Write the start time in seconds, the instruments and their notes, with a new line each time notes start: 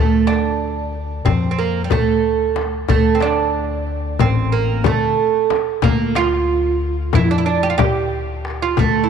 Already playing: upright bass D2, oud A3
0.27 oud D4, darbuka tek, frame drum
0.60 darbuka ka
0.92 darbuka ka
1.25 upright bass F2, oud C4, darbuka dum, frame drum
1.51 oud C4
1.59 oud A#3
1.84 oud G3
1.90 upright bass D2, oud A3, darbuka dum, frame drum
2.56 darbuka tek, frame drum
2.88 upright bass D2, oud A3, frame drum, darbuka dum
3.15 oud C4
3.20 oud D4, darbuka tek, frame drum
3.54 darbuka ka
3.87 darbuka ka
4.19 upright bass A1, oud C4, frame drum, darbuka dum
4.52 oud A#3, darbuka ka
4.84 upright bass D3, oud A3, frame drum, darbuka dum
5.50 darbuka tek, frame drum
5.82 upright bass D2, oud A#3, frame drum, darbuka dum
6.15 oud F4, darbuka tek, frame drum
6.48 darbuka ka
6.81 darbuka ka
7.13 upright bass F2, oud E4, frame drum, darbuka dum
7.31 oud D4
7.38 oud E4
7.46 oud D4, darbuka ka
7.63 oud G4
7.70 oud F4
7.78 upright bass D2, oud G4, darbuka dum, frame drum
8.45 darbuka tek
8.62 oud F4
8.77 upright bass D2, oud A3, frame drum, darbuka dum
9.04 oud E4